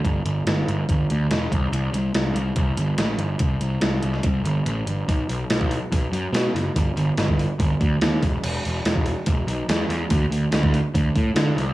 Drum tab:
CC |----------------|----------------|----------------|----------------|
HH |x-x-x-x-x-x-x-x-|x-x-x-x-x-x-x-x-|x-x-x-x-x-x-x-x-|o-o-o-o-o-o-o-o-|
SD |----o-------o---|----o-------o---|----o--o--------|----o-------o-o-|
BD |o-------o-----o-|--------o-------|o-------o-------|o----o--o-------|

CC |----------------|x---------------|----------------|
HH |o-o-o-o-o-o-o-o-|--o-o-o-o-o-o-o-|o-o-o-o-o-o-o-o-|
SD |----o-------o-o-|----o-------o-o-|----o-------o-o-|
BD |o----o--o-o---o-|-----o--o-------|o----o--o-o-----|